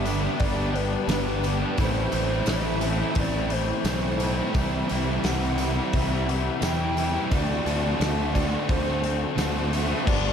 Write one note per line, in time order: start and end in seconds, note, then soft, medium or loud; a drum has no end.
0.00 0.27 G1 medium
0.00 0.40 G2 medium
0.00 0.40 D3 medium
0.00 0.24 G3 medium
0.00 0.41 E5 loud
0.05 0.22 B3 medium
0.05 0.21 D4 medium
0.05 0.20 G4 medium
0.05 open hi-hat medium
0.05 tambourine medium
0.21 0.57 G3 medium
0.21 0.56 B3 medium
0.21 0.55 D4 medium
0.21 0.55 G4 medium
0.39 0.95 G1 medium
0.39 0.77 D5 loud
0.39 kick loud
0.39 open hi-hat medium
0.55 0.71 G3 medium
0.55 0.72 B3 medium
0.55 0.73 D4 medium
0.55 0.74 G4 medium
0.72 1.08 G3 medium
0.72 1.08 B3 medium
0.72 1.08 D4 medium
0.72 1.09 G4 medium
0.72 1.44 B4 medium
0.72 muted overdriven electric guitar stroke soft
0.72 open hi-hat medium
1.06 1.63 G1 loud
1.06 1.60 G2 medium
1.06 1.60 D3 loud
1.06 1.27 G3 loud
1.06 1.26 B3 loud
1.06 1.24 D4 loud
1.06 1.24 G4 loud
1.06 snare loud
1.06 open hi-hat medium
1.06 tambourine medium
1.25 1.41 G3 medium
1.25 1.42 B3 medium
1.25 1.43 D4 medium
1.25 1.45 G4 medium
1.41 1.62 G3 medium
1.41 1.60 B3 medium
1.41 1.59 D4 medium
1.41 1.59 G4 medium
1.41 open hi-hat medium
1.41 tambourine medium
1.59 1.77 G3 medium
1.59 1.77 B3 medium
1.59 1.76 D4 medium
1.59 1.80 G4 medium
1.77 2.06 A1 medium
1.77 2.44 A2 medium
1.77 2.10 E3 loud
1.77 2.11 A3 loud
1.77 2.13 C4 loud
1.77 2.14 E4 loud
1.77 2.51 C5 loud
1.77 kick loud
1.77 open hi-hat medium
1.77 tambourine medium
2.11 2.40 A1 medium
2.11 2.46 E3 medium
2.11 2.31 A3 medium
2.11 2.30 C4 medium
2.11 2.28 E4 medium
2.11 open hi-hat medium
2.11 tambourine medium
2.28 2.46 A3 medium
2.28 2.47 C4 medium
2.28 2.48 E4 medium
2.45 3.02 A1 medium
2.45 3.16 A2 medium
2.45 2.80 E3 medium
2.45 2.80 A3 loud
2.45 2.82 C4 medium
2.45 2.83 E4 medium
2.45 3.20 E5 loud
2.45 snare loud
2.45 open hi-hat medium
2.45 tambourine medium
2.62 2.80 A3 medium
2.62 2.83 C4 medium
2.62 2.84 E4 medium
2.80 3.33 E3 medium
2.80 3.00 A3 medium
2.80 3.00 C4 medium
2.80 2.96 E4 medium
2.80 open hi-hat medium
2.80 tambourine medium
2.98 3.35 A3 medium
2.98 3.34 C4 medium
2.98 3.32 E4 medium
3.15 3.71 A1 medium
3.15 3.54 D5 loud
3.15 kick loud
3.15 open hi-hat medium
3.33 3.49 A3 medium
3.33 3.51 C4 medium
3.33 3.52 E4 medium
3.49 3.84 E3 medium
3.49 3.85 A3 medium
3.49 3.87 C4 medium
3.49 3.86 E4 medium
3.49 4.21 C5 medium
3.49 muted overdriven electric guitar stroke soft
3.49 open hi-hat medium
3.84 4.40 B1 medium
3.84 4.37 A2 loud
3.84 4.19 E3 loud
3.84 4.05 A3 loud
3.84 4.04 C4 loud
3.84 4.01 E4 loud
3.84 snare loud
3.84 open hi-hat medium
3.84 tambourine medium
4.02 4.20 A3 medium
4.02 4.22 C4 medium
4.02 4.22 E4 medium
4.20 4.53 E3 medium
4.20 4.39 A3 medium
4.20 4.39 C4 medium
4.20 4.36 E4 medium
4.20 open hi-hat medium
4.20 tambourine medium
4.37 4.54 A3 medium
4.37 4.57 C4 medium
4.37 4.53 E4 medium
4.54 4.82 C2 medium
4.54 5.23 C3 medium
4.54 4.88 E3 medium
4.54 4.89 G3 medium
4.54 4.91 C4 loud
4.54 4.91 E4 loud
4.54 5.26 E5 loud
4.54 kick loud
4.54 open hi-hat medium
4.54 tambourine medium
4.89 5.18 C2 medium
4.89 5.24 E3 medium
4.89 5.09 G3 medium
4.89 5.09 C4 medium
4.89 5.06 E4 medium
4.89 open hi-hat medium
4.89 tambourine medium
5.08 5.25 G3 medium
5.08 5.26 C4 medium
5.08 5.26 E4 medium
5.24 5.79 C2 medium
5.24 5.93 C3 medium
5.24 5.57 E3 medium
5.24 5.58 G3 medium
5.24 5.59 C4 loud
5.24 5.60 E4 medium
5.24 5.91 F#5 loud
5.24 snare loud
5.24 open hi-hat medium
5.24 tambourine medium
5.41 5.58 G3 medium
5.41 5.61 C4 medium
5.41 5.61 E4 medium
5.58 6.10 E3 medium
5.58 5.77 G3 medium
5.58 5.75 C4 medium
5.58 5.74 E4 medium
5.58 open hi-hat medium
5.58 tambourine medium
5.76 6.11 G3 medium
5.76 6.10 C4 medium
5.76 6.08 E4 medium
5.91 6.48 C2 medium
5.91 6.63 E5 loud
5.91 kick loud
5.91 open hi-hat medium
6.09 6.27 G3 medium
6.09 6.28 C4 medium
6.09 6.29 E4 medium
6.27 6.61 E3 medium
6.27 6.61 G3 medium
6.27 6.63 C4 medium
6.27 6.63 E4 loud
6.27 muted overdriven electric guitar stroke soft
6.27 open hi-hat medium
6.61 7.17 E2 medium
6.61 7.14 C3 loud
6.61 6.95 E3 loud
6.61 6.80 G3 loud
6.61 6.79 C4 loud
6.61 6.77 E4 loud
6.61 7.33 G5 loud
6.61 snare medium
6.61 open hi-hat medium
6.61 tambourine loud
6.78 6.96 G3 medium
6.78 6.97 C4 medium
6.78 6.98 E4 medium
6.96 7.29 E3 medium
6.96 7.16 G3 medium
6.96 7.14 C4 medium
6.96 7.13 E4 medium
6.96 open hi-hat medium
6.96 tambourine medium
7.14 7.31 G3 medium
7.14 7.30 C4 medium
7.14 7.29 E4 medium
7.31 7.59 D2 medium
7.31 7.64 D3 loud
7.31 7.65 A3 medium
7.31 7.67 C4 loud
7.31 7.68 F#4 loud
7.31 8.01 D5 loud
7.31 kick loud
7.31 open hi-hat medium
7.31 tambourine medium
7.65 7.93 D2 medium
7.65 7.98 D3 medium
7.65 7.85 A3 medium
7.65 7.83 C4 medium
7.65 7.82 F#4 medium
7.65 open hi-hat medium
7.65 tambourine medium
7.83 7.99 A3 medium
7.83 8.00 C4 medium
7.83 8.01 F#4 medium
7.99 8.55 D2 medium
7.99 8.32 D3 medium
7.99 8.33 A3 medium
7.99 8.35 C4 medium
7.99 8.35 F#4 medium
7.99 8.36 E5 loud
7.99 snare loud
7.99 open hi-hat medium
7.99 tambourine medium
8.17 8.33 A3 medium
8.17 8.34 C4 medium
8.17 8.35 F#4 medium
8.33 8.86 D3 medium
8.33 8.54 A3 medium
8.33 8.52 C4 medium
8.33 8.51 F#4 medium
8.33 8.68 D5 medium
8.33 kick medium
8.33 open hi-hat medium
8.33 tambourine medium
8.52 8.87 A3 medium
8.52 8.85 C4 medium
8.52 8.84 F#4 medium
8.69 9.24 D2 medium
8.69 9.34 C5 medium
8.69 kick loud
8.69 open hi-hat medium
8.69 tambourine soft
8.85 9.02 A3 medium
8.85 9.03 C4 medium
8.85 9.04 F#4 medium
9.01 9.34 D3 medium
9.01 9.36 A3 medium
9.01 9.37 C4 medium
9.01 9.38 F#4 medium
9.01 muted overdriven electric guitar stroke soft
9.01 open hi-hat medium
9.36 9.92 D2 loud
9.36 9.70 D3 loud
9.36 9.55 A3 medium
9.36 9.54 C4 loud
9.36 9.52 F#4 loud
9.36 snare loud
9.36 open hi-hat medium
9.36 tambourine medium
9.53 9.71 A3 medium
9.53 9.72 C4 medium
9.53 9.72 F#4 medium
9.71 10.04 D3 medium
9.71 9.90 A3 medium
9.71 9.89 C4 medium
9.71 9.88 F#4 medium
9.71 10.08 E5 loud
9.71 open hi-hat medium
9.71 tambourine medium
9.89 10.06 A3 medium
9.89 10.05 C4 medium
9.89 10.05 F#4 medium
10.05 10.32 G1 medium
10.05 10.33 G2 medium
10.05 10.33 D3 loud
10.05 10.33 G3 loud
10.05 10.33 B3 loud
10.05 10.33 D4 loud
10.05 10.33 G4 loud
10.05 10.33 D5 loud
10.05 kick loud
10.05 crash loud